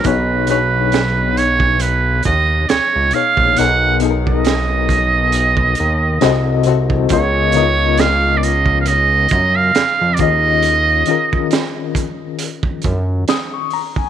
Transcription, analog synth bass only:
X:1
M:4/4
L:1/16
Q:"Swing 16ths" 1/4=68
K:Blyd
V:1 name="Analog synth bass" clef=bass
B,,,8- B,,,2 D,,2 C,, C,, z A,,, | B,,,8- B,,,2 D,,2 =C,,4 | C,,8- C,,2 F,,2 E,, E,, D,,2- | D,,2 z8 F,,2 z4 |]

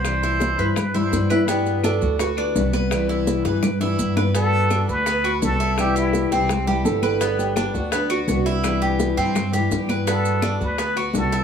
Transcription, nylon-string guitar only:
X:1
M:4/4
L:1/8
Q:1/4=168
K:G
V:1 name="Nylon-string guitar"
z6 z E | G2 A2 B4 | z8 | z8 |
z3 G3 A2- | A G2 F D4 | z8 | z8 |]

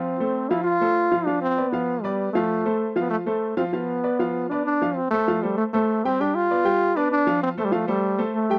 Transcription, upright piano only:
X:1
M:4/4
L:1/8
Q:1/4=195
K:Flyd
V:1 name="Upright piano"
[F,Ff] [A,Ac]2 [F,Ff]2 [A,Ac]2 [F,Ff] | [F,Ff]2 [B,Bd] [F,Ff]2 [B,Bd]2 [F,Ff]- | [F,Ff] [A,Ac]2 [F,Ff]2 [A,Ac]2 [F,Ff] | [F,Ff]2 [B,Bd] [F,Ff]2 [B,Bd]2 [F,Ff] |
z [A,Ac] [F,Ff] [A,Ac]2 [A,Ac]2 [G,Gg] | [G,Gg]2 [B,Bd] [G,Gg]2 [B,Bd]2 [F,Ff]- | [F,Ff] [A,Ac] [F,Ff] [A,Ac]2 [A,Ac]2 [G,Gg] |]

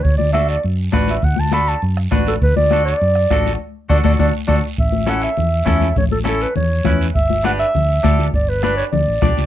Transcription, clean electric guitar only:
X:1
M:4/4
L:1/8
Q:1/4=203
K:D
V:1 name="Clean electric guitar"
z2 [DFA] z3 [DFB] z | z2 [DFA] z3 [DFB] z | z2 [DFA] z3 [DFA] z | z2 [DFA] [DFA] [DFA] z [DFA] z |
z2 [CEA] z3 [CEA] z | z2 [CEA] z3 [CEB] z | z2 [DGB] z3 [DGA] z | z2 [DGB] z3 [DGd] z |]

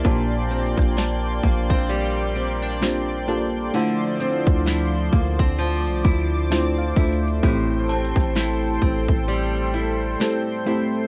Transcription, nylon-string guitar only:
X:1
M:4/4
L:1/16
Q:"Swing 16ths" 1/4=65
K:Dm
V:1 name="Nylon-string guitar"
[B,,D]2 C2 D2 B, C G,2 C D C2 D2 | [D,E]2 C2 E2 B, C F,2 E2 C2 E2 | [A,,E]2 C2 E2 C2 G,2 E2 C2 E2 |]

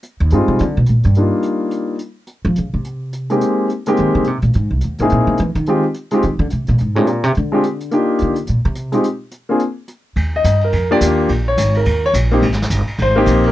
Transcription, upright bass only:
X:1
M:4/4
L:1/8
Q:"Swing" 1/4=213
K:Eb
V:1 name="Upright bass" clef=bass
z E,, G,, C, D, _C, B,, G,,- | G,, z6 z | z F, _D, C,4- C, | z4 E, D, C, B,, |
^G,, C,, ^D,, G,, B,, _D, =E, ^D,- | ^D, z3 E, =D, C, B,, | A,, =A,, B,, C, D,4 | z2 D,2 B,, C,2 z |
z8 | E,,2 G,,2 F,,2 E,,2 | B,,,2 A,,,2 E,,2 B,,,2 | A,,,2 G,,, z A,,,2 B,,,2 |]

